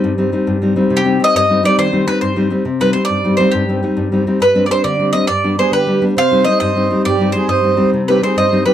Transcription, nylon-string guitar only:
\new Staff \with { instrumentName = "Nylon-string guitar" } { \time 6/8 \key c \minor \tempo 4. = 137 <g, g c' ees'>8 <g c' ees'>8 <g c' ees'>8 g,8 <g c' ees'>8 <g c' ees'>8 | c8 <g c' ees'>8 <g c' ees'>8 g,8 <g c' ees'>8 <g c' ees'>8 | ees8 <g c' ees'>8 <g c' ees'>8 g,8 <g c' ees'>8 <g c' ees'>8 | c8 <g c' ees'>8 <g c' ees'>8 g,8 <g c' ees'>8 <g c' ees'>8 |
g,8 <g c' ees'>8 <g c' ees'>8 g,8 <g c' ees'>8 <g c' ees'>8 | g,8 <g c' d'>8 <g c' d'>8 d8 <g c' d'>8 <g c' d'>8 | g,8 <g b d'>8 <g b d'>8 d8 <g b d'>8 <g b d'>8 | c8 <g c' ees'>8 <g c' ees'>8 g,8 <g c' ees'>8 <g c' ees'>8 |
g,8 <g c' ees'>8 <g c' ees'>8 g,8 <g c' ees'>8 <g c' ees'>8 | c8 <g c' ees'>8 <g c' ees'>8 g,8 <g c' ees'>8 <g c' ees'>8 | }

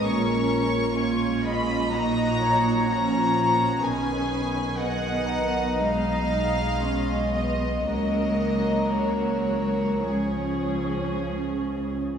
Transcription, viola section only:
\new Staff \with { instrumentName = "Viola section" } { \time 4/4 \key fis \major \tempo 4 = 60 << { cis'4 cis'4 dis'4 cis'8 cis'8~ | cis'4 b4 dis'4 cis'8 b8 | ais2 cis'2 | } \\ { gis4 gis4 fis4 eis4 | dis8 dis4. gis8 gis4. | fis2 eis2 | } >> }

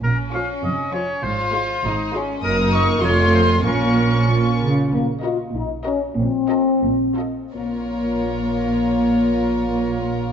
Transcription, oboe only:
\new Staff \with { instrumentName = "Oboe" } { \time 2/4 \key bes \minor \tempo 4 = 95 bes'8 f''8 ees''8 des''8 | c''4. r8 | bes'8 ees''8 des''8 c''8 | bes'4 r4 |
r2 | r2 | r2 | r2 | }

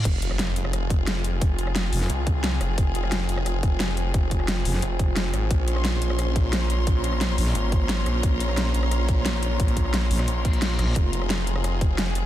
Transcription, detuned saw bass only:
\new Staff \with { instrumentName = "Detuned saw bass" } { \clef bass \time 4/4 \key f \minor \tempo 4 = 176 f,,4. f,,2~ f,,8 | r2 c,4. f,,8 | f,,4. f,,2~ f,,8 | r2 f,,4. aes,,8 |
bes,,4. bes,,2~ bes,,8 | bes,,4. r8 aes,,4. bes,,8 | bes,,4. bes,,2~ bes,,8 | bes,,4. r8 bes,,4. r8 |
f,,4. f,,2~ f,,8 | }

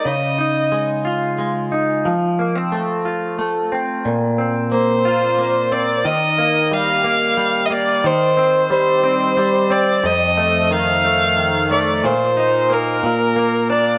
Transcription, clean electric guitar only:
\new Staff \with { instrumentName = "Clean electric guitar" } { \time 6/8 \key ees \major \tempo 4. = 60 des8 ees'8 aes8 f'8 aes8 ees'8 | f8 bes16 c'16 a8 f'8 a8 c'8 | bes,8 c'8 bes8 f'8 bes8 c'8 | ees8 bes8 g8 bes8 g8 bes8 |
ees8 c'8 g8 c'8 g8 c'8 | f,8 a8 ees8 a8 ees8 a8 | bes,8 ees'8 bes8 bes,8 bes8 d'8 | }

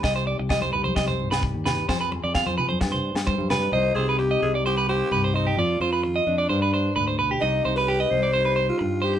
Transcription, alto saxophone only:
\new Staff \with { instrumentName = "Alto saxophone" } { \time 4/4 \key c \minor \tempo 4 = 130 r1 | r2. r8 b'8 | c''8 aes'8 g'8 aes'8 g'8 g'4 ees'8 | f'8 f'4 d'2 r8 |
ees'8. b'8. c''4~ c''16 f'8. g'8 | }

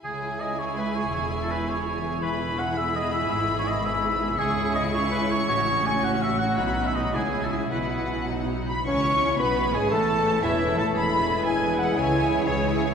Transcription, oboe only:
\new Staff \with { instrumentName = "Oboe" } { \time 6/8 \key cis \minor \tempo 4. = 111 gis'4 dis''8 cis''8 b'8 cis''8 | cis''8. a'16 b'8 cis''4. | b'4 fis''8 e''8 dis''8 e''8 | e''8. cis''16 dis''8 e''4. |
\key e \major gis'4 dis''8 cis''8 b'8 cis''8 | cis''4 gis''8 fis''8 e''8 fis''8 | fis''8. e''16 dis''8 gis'8. a'16 gis'8 | b'4. r4. |
cis''4. b'4 gis'8 | a'4. e'4 a'8 | gis'4. gis'4. | gis'4. gis'4. | }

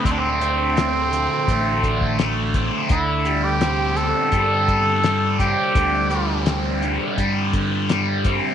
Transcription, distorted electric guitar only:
\new Staff \with { instrumentName = "Distorted electric guitar" } { \clef bass \time 4/4 \key c \lydian \tempo 4 = 84 <d a c'>8 a8 c'8 d8 a8 d8 a8 c'8 | d8 g8 c'8 d8 g8 d8 g8 c'8 | d8 g8 c'8 d8 g8 d8 g8 c'8 | }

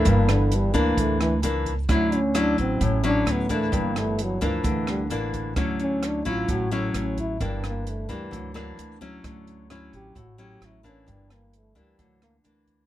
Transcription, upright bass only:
\new Staff \with { instrumentName = "Upright bass" } { \clef bass \time 4/4 \key g \lydian \tempo 4 = 131 g,,4. d,8 d,4 cis,4 | d,4. a,,8 a,,4 d,4 | g,,4. d,8 d,4 a,,4 | d,4. a,,8 a,,4 a,,4 |
g,,4. d,8 d,4 d,4 | d,4. a,,8 a,,4 a,,4 | g,,4. d,8 d,4 d,4 | }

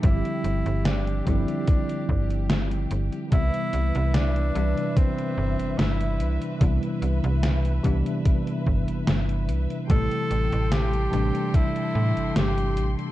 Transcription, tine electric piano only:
\new Staff \with { instrumentName = "Tine electric piano" } { \clef bass \time 4/4 \key c \major \tempo 4 = 73 <d f g c' g'>4. <d f g c' e'>2~ <d f g c' e'>8 | <c e g b e'>4. <c e g d' b'>2~ <c e g d' b'>8 | <c e g b e'>4. <c e g b d'>2~ <c e g b d'>8 | <c e g a e'>4. <c e g a d'>2~ <c e g a d'>8 | }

